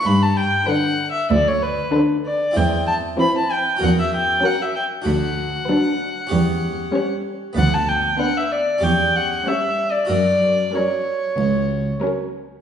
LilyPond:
<<
  \new Staff \with { instrumentName = "Violin" } { \time 4/4 \key b \minor \tempo 4 = 96 b''16 a''16 g''8 \tuplet 3/2 { fis''4 e''8 } d''16 cis''16 b'8 r8 d''8 | g''8 a''8 b''16 a''16 g''8 fis''16 e''16 g''8 fis''16 e''16 g''8 | fis''2.~ fis''16 r8. | fis''16 a''16 g''8 fis''16 e''16 d''8 g''8 fis''8 \tuplet 3/2 { e''4 d''8 } |
d''4 cis''2 r4 | }
  \new Staff \with { instrumentName = "Violin section" } { \time 4/4 \key b \minor r4 b'4 r4 b'4 | r4 c''4 r4 ais'4 | r4 b'4 r4 cis''4 | r4 b'4 r4 cis''4 |
r4 ais'4 r4 ais'4 | }
  \new Staff \with { instrumentName = "Harpsichord" } { \time 4/4 \key b \minor <d' b'>1 | <c' e' c''>2 <cis' fis' ais'>2 | <d' fis' b'>2 <cis' g' cis''>2 | <b b' d''>2 <cis' g' cis''>2 |
<cis' fis' ais'>1 | }
  \new Staff \with { instrumentName = "Harpsichord" } { \clef bass \time 4/4 \key b \minor g,4 r4 d,4 r4 | e,4 r4 e,4 r4 | d,4 r4 e,4 r4 | d,4 r4 e,4 r4 |
fis,4 r4 cis,4 r4 | }
  \new Staff \with { instrumentName = "Violin section" } { \time 4/4 \key b \minor r4 d'4 r4 d'4 | r4 c'4 r4 cis'4 | r4 d'4 r4 cis'4 | r4 d'4 r4 cis'4 |
r4 cis'4 r4 cis'4 | }
  \new Staff \with { instrumentName = "Viola section" } { \clef bass \time 4/4 \key b \minor r4 d4 r4 d4 | r4 e4 r4 fis4 | r4 fis4 r4 g4 | r4 b4 r4 g4 |
r4 fis4 r4 fis4 | }
  \new Staff \with { instrumentName = "Cello section" } { \clef bass \time 4/4 \key b \minor g,4 r4 d,4 r4 | e,4 r4 e,4 r4 | d,4 r4 e,4 r4 | d,4 r4 e,4 r4 |
fis,4 r4 cis,4 r4 | }
>>